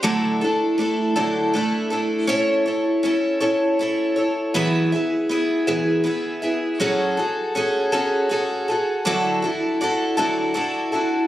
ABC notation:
X:1
M:6/8
L:1/8
Q:3/8=53
K:Dlyd
V:1 name="Twelve-string acoustic guitar"
[D,F,A,DEA] [A,DEA] [A,DEA] [D,F,A,DEA] [A,DEA] [A,DEA] | [CEAc] [EAc] [CEAc] [CEAc] [CEAc] [EAc] | [E,F,B,EGe] [B,EGe] [B,EGe] [E,F,B,EGe] [B,EGe] [B,EGe] | [F,CFGA] [FGA] [CFGA] [F,CFGA] [CFGA] [FGA] |
[D,F,DEFA] [DEFA] [DEFA] [D,F,DEFA] [DEFA] [DEFA] |]